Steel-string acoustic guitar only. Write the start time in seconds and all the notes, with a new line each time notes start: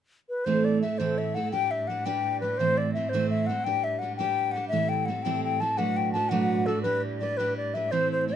0.46 A2 E3 A3 C4 E4 A4
0.83 A3 C4 E4 A4
1.00 A2 E3 A3 C4 E4 A4
1.35 A3 C4 E4 A4
1.52 G3 D4 G4 B4
1.89 G3 D4 G4 B4
2.06 G3 D4 G4 B4
2.42 G3 D4 G4 B4
2.59 A2 E3 A3 C4 E4 C5
2.95 A3 C4 E4 C5
3.13 A2 E3 A3 C4 E4 C5
3.49 A3 C4 E4 C5
3.66 G3 D4 G4 B4
4.02 G3 D4 G4 B4
4.19 G3 D4 G4 B4
4.55 G3 D4 G4 B4
4.72 A2 E3 G3 C4 E4 A4
5.08 G3 C4 E4 A4
5.25 A2 E3 G3 C4 E4 A4
5.61 G3 C4 E4 A4
5.77 B2 F#3 A3 D4 F#4 B4
6.14 A3 D4 F#4 B4
6.31 B2 F#3 A3 D4 F#4 B4
6.67 A3 D4 F#4 B4
6.84 G3 D4 G4 B4
7.21 G3 D4 G4 B4
7.39 G3 D4 G4 B4
7.75 G3 D4 G4 B4
7.92 A2 E3 A3 C4 E4 C5
8.28 A3 C4 E4 C5